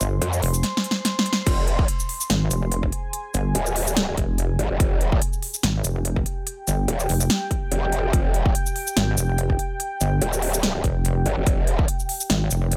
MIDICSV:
0, 0, Header, 1, 5, 480
1, 0, Start_track
1, 0, Key_signature, -4, "minor"
1, 0, Tempo, 416667
1, 1689, Time_signature, 4, 2, 24, 8
1, 14709, End_track
2, 0, Start_track
2, 0, Title_t, "Ambient pad"
2, 0, Program_c, 0, 92
2, 0, Note_on_c, 0, 84, 96
2, 2640, Note_on_c, 0, 80, 96
2, 2664, Note_off_c, 0, 84, 0
2, 5538, Note_on_c, 0, 79, 93
2, 5709, Note_off_c, 0, 80, 0
2, 14709, Note_off_c, 0, 79, 0
2, 14709, End_track
3, 0, Start_track
3, 0, Title_t, "Wobble bass"
3, 0, Program_c, 1, 39
3, 9, Note_on_c, 1, 31, 101
3, 231, Note_off_c, 1, 31, 0
3, 488, Note_on_c, 1, 29, 95
3, 729, Note_off_c, 1, 29, 0
3, 2649, Note_on_c, 1, 32, 100
3, 2872, Note_off_c, 1, 32, 0
3, 2887, Note_on_c, 1, 29, 94
3, 3351, Note_off_c, 1, 29, 0
3, 3849, Note_on_c, 1, 31, 98
3, 4072, Note_off_c, 1, 31, 0
3, 4810, Note_on_c, 1, 29, 93
3, 5272, Note_off_c, 1, 29, 0
3, 6490, Note_on_c, 1, 32, 97
3, 6712, Note_off_c, 1, 32, 0
3, 6730, Note_on_c, 1, 29, 94
3, 7192, Note_off_c, 1, 29, 0
3, 7690, Note_on_c, 1, 31, 97
3, 7912, Note_off_c, 1, 31, 0
3, 8169, Note_on_c, 1, 29, 99
3, 8392, Note_off_c, 1, 29, 0
3, 10329, Note_on_c, 1, 32, 98
3, 10552, Note_off_c, 1, 32, 0
3, 10569, Note_on_c, 1, 29, 97
3, 11031, Note_off_c, 1, 29, 0
3, 11529, Note_on_c, 1, 31, 95
3, 11751, Note_off_c, 1, 31, 0
3, 12489, Note_on_c, 1, 29, 97
3, 12951, Note_off_c, 1, 29, 0
3, 14168, Note_on_c, 1, 32, 102
3, 14391, Note_off_c, 1, 32, 0
3, 14408, Note_on_c, 1, 29, 97
3, 14709, Note_off_c, 1, 29, 0
3, 14709, End_track
4, 0, Start_track
4, 0, Title_t, "Wobble bass"
4, 0, Program_c, 2, 39
4, 249, Note_on_c, 2, 41, 96
4, 471, Note_off_c, 2, 41, 0
4, 1688, Note_on_c, 2, 29, 96
4, 2151, Note_off_c, 2, 29, 0
4, 4088, Note_on_c, 2, 27, 95
4, 4791, Note_off_c, 2, 27, 0
4, 5289, Note_on_c, 2, 31, 99
4, 5399, Note_off_c, 2, 31, 0
4, 5421, Note_on_c, 2, 29, 99
4, 5511, Note_off_c, 2, 29, 0
4, 5529, Note_on_c, 2, 29, 96
4, 5992, Note_off_c, 2, 29, 0
4, 7929, Note_on_c, 2, 27, 95
4, 8151, Note_off_c, 2, 27, 0
4, 8888, Note_on_c, 2, 29, 101
4, 9351, Note_off_c, 2, 29, 0
4, 9369, Note_on_c, 2, 29, 101
4, 9831, Note_off_c, 2, 29, 0
4, 11768, Note_on_c, 2, 27, 99
4, 12471, Note_off_c, 2, 27, 0
4, 12968, Note_on_c, 2, 31, 98
4, 13079, Note_off_c, 2, 31, 0
4, 13099, Note_on_c, 2, 29, 101
4, 13191, Note_off_c, 2, 29, 0
4, 13209, Note_on_c, 2, 29, 98
4, 13671, Note_off_c, 2, 29, 0
4, 14709, End_track
5, 0, Start_track
5, 0, Title_t, "Drums"
5, 9, Note_on_c, 9, 42, 52
5, 9, Note_on_c, 9, 82, 60
5, 124, Note_off_c, 9, 42, 0
5, 124, Note_off_c, 9, 82, 0
5, 249, Note_on_c, 9, 42, 82
5, 364, Note_off_c, 9, 42, 0
5, 381, Note_on_c, 9, 82, 55
5, 488, Note_on_c, 9, 46, 100
5, 496, Note_off_c, 9, 82, 0
5, 604, Note_off_c, 9, 46, 0
5, 621, Note_on_c, 9, 82, 80
5, 729, Note_on_c, 9, 38, 68
5, 729, Note_on_c, 9, 42, 81
5, 736, Note_off_c, 9, 82, 0
5, 844, Note_off_c, 9, 38, 0
5, 844, Note_off_c, 9, 42, 0
5, 889, Note_on_c, 9, 38, 78
5, 969, Note_on_c, 9, 42, 54
5, 1004, Note_off_c, 9, 38, 0
5, 1050, Note_on_c, 9, 38, 83
5, 1084, Note_off_c, 9, 42, 0
5, 1165, Note_off_c, 9, 38, 0
5, 1209, Note_on_c, 9, 38, 93
5, 1209, Note_on_c, 9, 42, 83
5, 1324, Note_off_c, 9, 38, 0
5, 1324, Note_off_c, 9, 42, 0
5, 1369, Note_on_c, 9, 38, 97
5, 1449, Note_on_c, 9, 42, 53
5, 1484, Note_off_c, 9, 38, 0
5, 1528, Note_on_c, 9, 38, 105
5, 1564, Note_off_c, 9, 42, 0
5, 1644, Note_off_c, 9, 38, 0
5, 1688, Note_on_c, 9, 42, 82
5, 1688, Note_on_c, 9, 49, 75
5, 1689, Note_on_c, 9, 36, 120
5, 1803, Note_off_c, 9, 42, 0
5, 1803, Note_off_c, 9, 49, 0
5, 1804, Note_off_c, 9, 36, 0
5, 1929, Note_on_c, 9, 42, 54
5, 2044, Note_off_c, 9, 42, 0
5, 2060, Note_on_c, 9, 36, 108
5, 2169, Note_on_c, 9, 42, 87
5, 2176, Note_off_c, 9, 36, 0
5, 2284, Note_off_c, 9, 42, 0
5, 2301, Note_on_c, 9, 82, 51
5, 2408, Note_on_c, 9, 46, 99
5, 2416, Note_off_c, 9, 82, 0
5, 2524, Note_off_c, 9, 46, 0
5, 2541, Note_on_c, 9, 82, 78
5, 2649, Note_on_c, 9, 38, 118
5, 2649, Note_on_c, 9, 42, 84
5, 2656, Note_off_c, 9, 82, 0
5, 2764, Note_off_c, 9, 38, 0
5, 2764, Note_off_c, 9, 42, 0
5, 2889, Note_on_c, 9, 42, 55
5, 2889, Note_on_c, 9, 82, 75
5, 3004, Note_off_c, 9, 42, 0
5, 3004, Note_off_c, 9, 82, 0
5, 3128, Note_on_c, 9, 42, 85
5, 3244, Note_off_c, 9, 42, 0
5, 3261, Note_on_c, 9, 36, 64
5, 3368, Note_on_c, 9, 42, 58
5, 3376, Note_off_c, 9, 36, 0
5, 3484, Note_off_c, 9, 42, 0
5, 3609, Note_on_c, 9, 42, 83
5, 3724, Note_off_c, 9, 42, 0
5, 3849, Note_on_c, 9, 42, 55
5, 3849, Note_on_c, 9, 82, 57
5, 3964, Note_off_c, 9, 42, 0
5, 3964, Note_off_c, 9, 82, 0
5, 4088, Note_on_c, 9, 42, 81
5, 4204, Note_off_c, 9, 42, 0
5, 4220, Note_on_c, 9, 82, 52
5, 4329, Note_on_c, 9, 46, 100
5, 4335, Note_off_c, 9, 82, 0
5, 4444, Note_off_c, 9, 46, 0
5, 4461, Note_on_c, 9, 82, 78
5, 4568, Note_on_c, 9, 38, 121
5, 4568, Note_on_c, 9, 42, 86
5, 4576, Note_off_c, 9, 82, 0
5, 4684, Note_off_c, 9, 38, 0
5, 4684, Note_off_c, 9, 42, 0
5, 4809, Note_on_c, 9, 36, 65
5, 4809, Note_on_c, 9, 42, 57
5, 4924, Note_off_c, 9, 42, 0
5, 4925, Note_off_c, 9, 36, 0
5, 5049, Note_on_c, 9, 42, 85
5, 5164, Note_off_c, 9, 42, 0
5, 5289, Note_on_c, 9, 42, 56
5, 5404, Note_off_c, 9, 42, 0
5, 5529, Note_on_c, 9, 36, 127
5, 5529, Note_on_c, 9, 42, 84
5, 5644, Note_off_c, 9, 36, 0
5, 5644, Note_off_c, 9, 42, 0
5, 5769, Note_on_c, 9, 42, 55
5, 5884, Note_off_c, 9, 42, 0
5, 5901, Note_on_c, 9, 36, 109
5, 6009, Note_on_c, 9, 42, 83
5, 6016, Note_off_c, 9, 36, 0
5, 6124, Note_off_c, 9, 42, 0
5, 6141, Note_on_c, 9, 82, 53
5, 6250, Note_on_c, 9, 46, 94
5, 6256, Note_off_c, 9, 82, 0
5, 6365, Note_off_c, 9, 46, 0
5, 6381, Note_on_c, 9, 82, 77
5, 6490, Note_on_c, 9, 38, 127
5, 6490, Note_on_c, 9, 42, 82
5, 6497, Note_off_c, 9, 82, 0
5, 6605, Note_off_c, 9, 38, 0
5, 6605, Note_off_c, 9, 42, 0
5, 6730, Note_on_c, 9, 42, 57
5, 6730, Note_on_c, 9, 82, 79
5, 6845, Note_off_c, 9, 42, 0
5, 6845, Note_off_c, 9, 82, 0
5, 6969, Note_on_c, 9, 42, 82
5, 7084, Note_off_c, 9, 42, 0
5, 7101, Note_on_c, 9, 36, 64
5, 7210, Note_on_c, 9, 42, 57
5, 7216, Note_off_c, 9, 36, 0
5, 7325, Note_off_c, 9, 42, 0
5, 7450, Note_on_c, 9, 42, 80
5, 7565, Note_off_c, 9, 42, 0
5, 7689, Note_on_c, 9, 42, 52
5, 7689, Note_on_c, 9, 82, 63
5, 7804, Note_off_c, 9, 42, 0
5, 7804, Note_off_c, 9, 82, 0
5, 7929, Note_on_c, 9, 42, 79
5, 8044, Note_off_c, 9, 42, 0
5, 8060, Note_on_c, 9, 82, 55
5, 8168, Note_on_c, 9, 46, 90
5, 8176, Note_off_c, 9, 82, 0
5, 8283, Note_off_c, 9, 46, 0
5, 8300, Note_on_c, 9, 82, 83
5, 8408, Note_on_c, 9, 38, 127
5, 8408, Note_on_c, 9, 42, 82
5, 8415, Note_off_c, 9, 82, 0
5, 8524, Note_off_c, 9, 38, 0
5, 8524, Note_off_c, 9, 42, 0
5, 8649, Note_on_c, 9, 36, 64
5, 8649, Note_on_c, 9, 42, 53
5, 8764, Note_off_c, 9, 36, 0
5, 8764, Note_off_c, 9, 42, 0
5, 8888, Note_on_c, 9, 42, 79
5, 9003, Note_off_c, 9, 42, 0
5, 9128, Note_on_c, 9, 42, 52
5, 9243, Note_off_c, 9, 42, 0
5, 9369, Note_on_c, 9, 36, 122
5, 9369, Note_on_c, 9, 42, 76
5, 9484, Note_off_c, 9, 36, 0
5, 9484, Note_off_c, 9, 42, 0
5, 9609, Note_on_c, 9, 42, 50
5, 9724, Note_off_c, 9, 42, 0
5, 9741, Note_on_c, 9, 36, 106
5, 9848, Note_on_c, 9, 42, 77
5, 9856, Note_off_c, 9, 36, 0
5, 9964, Note_off_c, 9, 42, 0
5, 9980, Note_on_c, 9, 82, 56
5, 10088, Note_on_c, 9, 46, 93
5, 10096, Note_off_c, 9, 82, 0
5, 10203, Note_off_c, 9, 46, 0
5, 10220, Note_on_c, 9, 82, 84
5, 10329, Note_on_c, 9, 38, 121
5, 10329, Note_on_c, 9, 42, 78
5, 10336, Note_off_c, 9, 82, 0
5, 10444, Note_off_c, 9, 38, 0
5, 10444, Note_off_c, 9, 42, 0
5, 10568, Note_on_c, 9, 42, 52
5, 10568, Note_on_c, 9, 82, 84
5, 10683, Note_off_c, 9, 42, 0
5, 10683, Note_off_c, 9, 82, 0
5, 10808, Note_on_c, 9, 42, 76
5, 10923, Note_off_c, 9, 42, 0
5, 10941, Note_on_c, 9, 36, 62
5, 11048, Note_on_c, 9, 42, 53
5, 11057, Note_off_c, 9, 36, 0
5, 11163, Note_off_c, 9, 42, 0
5, 11288, Note_on_c, 9, 42, 75
5, 11403, Note_off_c, 9, 42, 0
5, 11528, Note_on_c, 9, 42, 51
5, 11528, Note_on_c, 9, 82, 64
5, 11643, Note_off_c, 9, 42, 0
5, 11643, Note_off_c, 9, 82, 0
5, 11767, Note_on_c, 9, 42, 77
5, 11883, Note_off_c, 9, 42, 0
5, 11899, Note_on_c, 9, 82, 57
5, 12007, Note_on_c, 9, 46, 96
5, 12015, Note_off_c, 9, 82, 0
5, 12122, Note_off_c, 9, 46, 0
5, 12139, Note_on_c, 9, 82, 85
5, 12247, Note_on_c, 9, 38, 117
5, 12247, Note_on_c, 9, 42, 76
5, 12255, Note_off_c, 9, 82, 0
5, 12362, Note_off_c, 9, 38, 0
5, 12362, Note_off_c, 9, 42, 0
5, 12487, Note_on_c, 9, 42, 50
5, 12489, Note_on_c, 9, 36, 59
5, 12602, Note_off_c, 9, 42, 0
5, 12604, Note_off_c, 9, 36, 0
5, 12727, Note_on_c, 9, 42, 79
5, 12842, Note_off_c, 9, 42, 0
5, 12967, Note_on_c, 9, 42, 52
5, 13083, Note_off_c, 9, 42, 0
5, 13207, Note_on_c, 9, 42, 75
5, 13209, Note_on_c, 9, 36, 115
5, 13323, Note_off_c, 9, 42, 0
5, 13324, Note_off_c, 9, 36, 0
5, 13447, Note_on_c, 9, 42, 52
5, 13562, Note_off_c, 9, 42, 0
5, 13580, Note_on_c, 9, 36, 99
5, 13688, Note_on_c, 9, 42, 78
5, 13696, Note_off_c, 9, 36, 0
5, 13803, Note_off_c, 9, 42, 0
5, 13820, Note_on_c, 9, 82, 56
5, 13928, Note_on_c, 9, 46, 98
5, 13935, Note_off_c, 9, 82, 0
5, 14043, Note_off_c, 9, 46, 0
5, 14059, Note_on_c, 9, 82, 82
5, 14167, Note_on_c, 9, 38, 114
5, 14167, Note_on_c, 9, 42, 81
5, 14175, Note_off_c, 9, 82, 0
5, 14282, Note_off_c, 9, 38, 0
5, 14282, Note_off_c, 9, 42, 0
5, 14407, Note_on_c, 9, 42, 53
5, 14407, Note_on_c, 9, 82, 82
5, 14523, Note_off_c, 9, 42, 0
5, 14523, Note_off_c, 9, 82, 0
5, 14647, Note_on_c, 9, 42, 80
5, 14709, Note_off_c, 9, 42, 0
5, 14709, End_track
0, 0, End_of_file